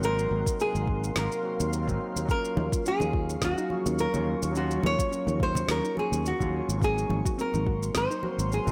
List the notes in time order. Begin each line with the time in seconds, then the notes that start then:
Already playing: G#1 C4 D#4 F#4 A#4 C6
0.00 F#3 A#3 C4 F5, shaker
0.05 D#4 A#4
0.19 shaker
0.31 G#1
0.46 kick, shaker
0.60 G#4, shaker
0.75 G#1, shaker
0.87 kick
1.04 shaker
1.16 G#1 A#4, snare, shaker
1.32 shaker
1.42 F#3 A#3 C4 F#4
1.60 D#2, shaker
1.73 shaker
1.86 G#1 F#3 A#3 C4 D#4, kick, shaker
2.16 D#2, shaker
2.26 F#3 A#3 C#4 F5 C#6, kick, shaker
2.31 F4 A#4
2.45 shaker
2.57 D#2 D#4, high conga
2.72 F4, kick, shaker
2.86 C#4 G#4, shaker
3.00 D#2 D#4, high conga, shaker
3.13 F4, kick
3.29 shaker
3.42 D#2 C#4 F#4, kick, snare, shaker
3.58 D#4, shaker
3.69 F#3 A#3 C#4 F4 G#4, high conga
3.86 D#2 C#4, shaker
3.99 A#4, shaker
4.12 D#2 F#3 A#3 C#4 F4, high conga, low conga, shaker
4.43 D#2, shaker
4.52 F#3 A#3 C#4, shaker
4.57 F4 F#4
4.71 shaker
4.83 D#2 D#4 C#5, high conga
4.99 F4, kick, shaker
5.11 C#4, shaker
5.27 D#2 D#4, high conga, shaker
5.40 F4 C5, kick
5.55 low conga, shaker
5.68 D#2 C#4 A#4, snare, shaker
5.84 D#4, shaker
5.95 F#3 A#3 C#4 F4 G#4, high conga
5.99 G#4
6.12 D#2 C#4, shaker
6.26 F#4, shaker
6.39 D#2 F#3 A#3 C#4 F4, kick, high conga, shaker
6.69 G#1, shaker
6.78 F#3 A#3 C4 A#4 C6, kick
6.82 C4 D#4 G#4, shaker
6.98 shaker
7.09 G#1 D#4, high conga
7.25 F#4, kick, shaker
7.38 C4 A#4, shaker
7.54 G#1 D#4, high conga, shaker
7.67 F#4, kick
7.83 shaker
7.95 G#1 C4 C5, kick, snare, shaker
8.10 D#4, shaker
8.21 F#3 A#3 C4 F#4, high conga
8.38 G#1 C4, shaker
8.52 G#4, shaker
8.65 G#1 F#3 A#3 C4 D#4, high conga, low conga, shaker